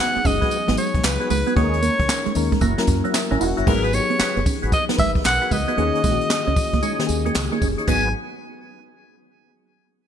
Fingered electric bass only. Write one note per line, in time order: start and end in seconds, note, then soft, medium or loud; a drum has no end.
0.16 muted fingered electric bass stroke soft
0.25 0.37 F#1 loud
0.69 0.75 G#1 loud
0.95 1.02 B1 loud
1.04 1.16 C#2 medium
1.31 1.43 C#2 medium
1.57 1.88 D#2 loud
2.00 2.07 C#2 medium
2.27 muted fingered electric bass stroke soft
2.36 2.48 D#2 loud
2.62 2.74 F#1 loud
2.88 3.00 F#2 loud
3.32 3.38 G#1 loud
3.41 3.53 E1 medium
3.58 3.65 F#1 medium
3.67 3.99 G#1 loud
4.20 muted fingered electric bass stroke soft
4.37 4.44 F#1 medium
4.63 4.70 G#1 medium
4.99 5.18 G#1 medium
5.26 5.38 B1 medium
5.52 5.64 C#2 medium
5.78 5.90 D#2 loud
6.04 6.16 A#1 loud
6.48 6.54 C#2 medium
6.74 6.80 C#2 medium
7.09 7.28 D#2 medium
7.36 7.48 C#2 medium
7.62 7.74 F#1 medium
7.88 8.13 G#1 medium